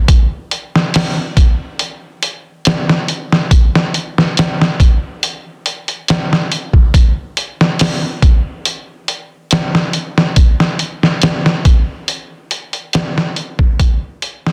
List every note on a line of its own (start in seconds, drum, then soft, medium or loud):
0.08 kick loud
0.08 closed hi-hat medium
0.51 closed hi-hat medium
0.76 snare soft
0.94 snare loud
0.94 open hi-hat medium
1.37 kick medium
1.37 closed hi-hat medium
1.79 closed hi-hat medium
2.23 closed hi-hat medium
2.65 snare loud
2.65 closed hi-hat medium
2.89 snare medium
3.08 closed hi-hat medium
3.32 snare soft
3.51 kick loud
3.51 closed hi-hat medium
3.75 snare medium
3.94 closed hi-hat medium
4.18 snare soft
4.37 snare loud
4.37 closed hi-hat medium
4.62 snare medium
4.80 kick loud
4.80 closed hi-hat medium
5.23 closed hi-hat medium
5.66 closed hi-hat medium
5.88 closed hi-hat soft
6.08 snare loud
6.08 closed hi-hat medium
6.33 snare soft
6.52 closed hi-hat medium
6.73 kick medium
6.94 kick loud
6.94 closed hi-hat medium
7.37 closed hi-hat medium
7.61 snare soft
7.79 snare loud
7.79 open hi-hat medium
8.22 kick loud
8.22 closed hi-hat medium
8.65 closed hi-hat medium
9.08 closed hi-hat medium
9.51 snare loud
9.51 closed hi-hat medium
9.75 snare medium
9.93 closed hi-hat medium
10.18 snare soft
10.36 kick loud
10.36 closed hi-hat medium
10.60 snare medium
10.79 closed hi-hat medium
11.03 snare soft
11.22 snare loud
11.22 closed hi-hat medium
11.46 snare medium
11.65 kick medium
11.65 closed hi-hat medium
12.08 closed hi-hat medium
12.51 closed hi-hat medium
12.73 closed hi-hat soft
12.93 snare loud
12.93 closed hi-hat medium
13.18 snare soft
13.36 closed hi-hat medium
13.59 kick medium
13.79 kick loud
13.79 closed hi-hat medium
14.22 closed hi-hat medium
14.47 snare medium